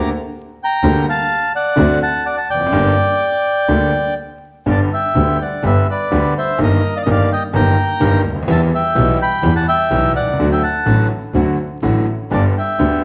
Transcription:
0.63 bandoneon G5 A#5
0.83 double bass D2, grand piano D2 D3 G3 A#3 G4
1.09 bandoneon F5 A5
1.56 bandoneon D5 F#5
1.76 grand piano D2 D3 A3 C4 F#4, double bass D2
2.02 bandoneon F#5 A5
2.26 bandoneon D5 F#5
2.37 bandoneon F#5 A5
2.50 double bass F1, bandoneon D5 G5
2.55 grand piano E2
2.60 grand piano F2
2.66 grand piano F#2
2.72 grand piano G1 G2 D3 G3 A#3 G4, double bass G1
3.68 grand piano D2 D3 G3 A#3 G4, double bass D2
4.66 grand piano G1 G2 D3 G3 B3 G4, double bass G1, bandoneon D5
4.71 bandoneon A5
4.93 bandoneon E5 G5
5.15 double bass D2, grand piano D2 D3 G3 B3 G4
5.41 bandoneon D5 F#5
5.63 grand piano G1 G2 D3 G3 B3 G4, double bass G1, bandoneon B4 E5
5.90 bandoneon B4 D5
6.11 double bass D2, grand piano D2 D3 G3 B3 G4
6.38 bandoneon C5 E5
6.58 grand piano G1 G2 D#3 G3 A#3 G4, double bass G1
6.63 bandoneon A#4 D#5
6.96 bandoneon D5 F5
7.03 grand piano G1 D#3 G3 A#3 G4, bandoneon D#5
7.07 double bass G1, grand piano G2, bandoneon D5
7.11 bandoneon F5
7.33 bandoneon D#5 G5
7.53 grand piano G1 G2 D#3 G3 A#3 G4, double bass G1, bandoneon G5 A#5
8.00 grand piano G1 G2 D#3 G3 A#3 G4, double bass G1
8.25 double bass D2
8.30 grand piano C#2
8.36 grand piano D2
8.43 grand piano D#2
8.48 grand piano E2 E3 G3 B3 G4, double bass E2, bandoneon E5 A5
8.75 bandoneon E5 G5
8.95 double bass B1, grand piano B1 B2 E3 G3 B3 G4
9.22 bandoneon G5 B5
9.43 double bass E2, grand piano E2 E3 G3 B3 G4
9.56 bandoneon F#5 A5
9.68 bandoneon E5 G5
9.90 double bass B1, grand piano B1 B2 E3 G3 B3 G4
10.14 double bass C2, bandoneon D5 F#5
10.21 grand piano B1
10.27 grand piano C2
10.33 grand piano C#2
10.38 double bass D2, grand piano D2 D3 F#3 A3 F#4
10.52 bandoneon E5 G5
10.63 bandoneon F#5 A5
10.86 grand piano A1 A2 D3 F#3 A3 F#4, double bass A1
11.34 double bass D2, grand piano D2 D3 F#3 A3 F#4
11.82 double bass A1, grand piano A1 A2 D3 F#3 A3 F#4
12.31 double bass G1, grand piano G1 G2 D3 G3 B3 G4, bandoneon D5 A5
12.58 bandoneon E5 G5
12.79 grand piano D2 D3 G3 B3 G4, double bass D2

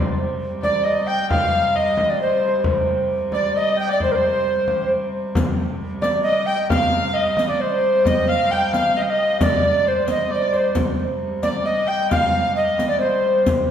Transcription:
Already playing: hurdy-gurdy C3 G3, harp C5 D5
0.40 frame drum
0.62 fiddle D5, recorder D5, harp D5, frame drum
0.83 fiddle D#5, recorder D#5, harp D#5
1.07 fiddle G5, recorder G5, harp G5
1.30 harp F5, recorder F5, fiddle F5, frame drum
1.75 fiddle D#5, harp D#5, recorder D#5, frame drum
1.97 frame drum
2.10 recorder D5
2.20 harp C5, fiddle C5, recorder C5
2.32 harp C5
2.48 harp C5
2.64 frame drum
3.10 frame drum
3.32 harp D5, fiddle D5, recorder D5, frame drum
3.56 harp D#5, recorder D#5, fiddle D#5
3.76 harp G5, recorder G5
3.89 harp D5, fiddle D5, recorder D5
4.00 harp C5, fiddle C5, recorder C5, frame drum
4.12 recorder A#4 C5, harp C5, fiddle C5
4.22 frame drum
4.68 frame drum
4.91 frame drum
5.35 hurdy-gurdy C3 G3, riq, frame drum
5.80 frame drum
6.01 recorder D5, fiddle D5, harp D5, riq, frame drum
6.23 recorder D#5, harp D#5, fiddle D#5
6.40 harp D#5
6.46 recorder G5, fiddle G5
6.56 harp D#5
6.70 harp F5, fiddle F5, recorder F5, riq, frame drum
6.92 harp F5
7.07 recorder F5
7.13 recorder D#5, harp D#5, fiddle D#5, frame drum
7.37 riq, frame drum
7.48 harp D5, recorder D5
7.60 harp C5, fiddle C5, recorder C5
8.04 harp D#5, fiddle D#5, recorder D#5, riq, frame drum
8.29 recorder F5, harp F5, fiddle F5
8.51 recorder G5, fiddle G5, harp G5, frame drum
8.73 recorder F5, fiddle F5, harp F5, riq, frame drum
8.96 recorder D#5, fiddle D#5, harp D#5
9.02 recorder F5
9.10 recorder D#5, fiddle D#5, harp D#5
9.41 recorder D5, harp D5, fiddle D5, riq, frame drum
9.85 harp C5, fiddle C5, recorder C5, frame drum
10.08 harp D#5, fiddle D#5, recorder D#5, riq, frame drum
10.30 fiddle D5, harp D5
10.34 recorder D5, fiddle D#5
10.42 fiddle D5
10.53 fiddle C5, harp C5, recorder C5, riq, frame drum
10.75 hurdy-gurdy C3 G3, riq, frame drum
11.21 frame drum
11.43 recorder D5, fiddle D5, harp D5, riq, frame drum
11.65 harp D#5, fiddle D#5, recorder D#5
11.87 fiddle G5, recorder G5, harp G5
12.11 recorder F5, harp F5, fiddle F5, riq, frame drum
12.33 fiddle F5
12.55 harp D#5, recorder D#5, fiddle D#5, frame drum
12.79 riq, frame drum
12.87 fiddle D5 D#5, recorder D5
13.00 recorder C5, fiddle C5, harp C5
13.26 harp C5
13.46 riq, frame drum

